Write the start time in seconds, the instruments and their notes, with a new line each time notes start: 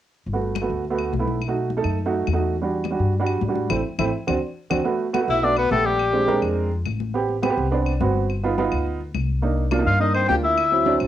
0.27 upright bass G1, high conga
0.33 grand piano A3 B3 F#4
0.42 high conga
0.55 high conga, claves
0.61 grand piano A3 B3 F#4
0.70 upright bass D2, high conga
0.85 high conga
0.90 grand piano A3 B3 F#4
0.98 high conga, claves
1.13 upright bass B1, high conga
1.19 grand piano A3 B3 E4
1.28 high conga
1.42 high conga, claves
1.48 grand piano A3 D#4 F#4
1.56 high conga
1.70 high conga
1.77 grand piano A3 D#4 A4
1.84 upright bass F#2, high conga, claves
1.99 high conga
2.06 grand piano A3 D#4 F#4
2.13 high conga
2.27 upright bass E2, high conga, claves
2.33 grand piano A3 D#4 F#4
2.56 high conga
2.62 grand piano G3 D4 F#4
2.71 high conga
2.84 high conga, claves
2.91 grand piano G3 D4 F#4
2.99 upright bass G2, high conga
3.13 high conga
3.20 grand piano G3 D4 F#4
3.27 high conga, claves
3.41 upright bass A2, high conga
3.48 grand piano G3 D4 F#4
3.55 high conga
3.70 upright bass A1, grand piano A3 C4 E4, low conga, claves
3.98 upright bass A1, grand piano A3 C4 E4, low conga, claves
4.27 upright bass D2, grand piano C4 D4 F#4, low conga, claves
4.70 upright bass D2, grand piano C4 D4 F#4, low conga, claves
4.84 grand piano A3 B3 F#4, high conga
5.00 high conga
5.13 grand piano A3 B3 F#4, high conga, claves
5.20 grand piano A3 B3 F#4
5.28 upright bass B1, tenor saxophone E4, oboe E5, high conga
5.42 grand piano A3 B3 F#4, tenor saxophone D4, oboe D5, high conga
5.57 tenor saxophone B3, oboe B4, high conga, claves
5.70 upright bass A#1, grand piano A3 B3 G4, tenor saxophone A3, oboe A4, high conga
5.86 tenor saxophone G3, oboe G4
5.99 high conga, claves
6.13 grand piano G#3 C4 D4 G4, high conga
6.27 grand piano G#3 C4 D4 A#4, high conga
6.42 upright bass F2, high conga, claves
6.57 high conga
6.72 high conga
6.85 upright bass A1, high conga, claves
7.00 high conga
7.14 grand piano B3 C4 G4, high conga
7.28 high conga
7.42 grand piano B3 C4 G4, high conga, claves
7.50 grand piano B3 C4 G4
7.57 upright bass C2, high conga
7.71 grand piano B3 C4 D4, high conga
7.86 high conga, claves
8.00 upright bass G1, grand piano B3 C4 F#4, high conga
8.30 high conga, claves
8.44 grand piano B3 D#4 F4, high conga
8.58 grand piano B3 D#4 F4, high conga
8.72 upright bass D2, high conga, claves
8.86 high conga
9.01 high conga
9.14 upright bass C2, high conga, claves
9.42 grand piano A#3 D4 D#4, high conga
9.58 high conga
9.71 grand piano A#3 D4 F4, high conga, claves
9.79 grand piano A#3 D4 D#4
9.86 upright bass G2, tenor saxophone F4, oboe F5, high conga
9.99 grand piano A#3 D4 D#4, tenor saxophone D#4, oboe D#5, high conga
10.14 tenor saxophone C4, oboe C5, high conga, claves
10.28 upright bass D2, grand piano A#3 D4 F4, tenor saxophone G4, oboe G5, high conga
10.44 tenor saxophone E4, oboe E5
10.57 high conga, claves
10.72 grand piano F#3 C4 E4, high conga
10.86 grand piano F#3 C4 D4, high conga
11.00 upright bass A1, high conga, claves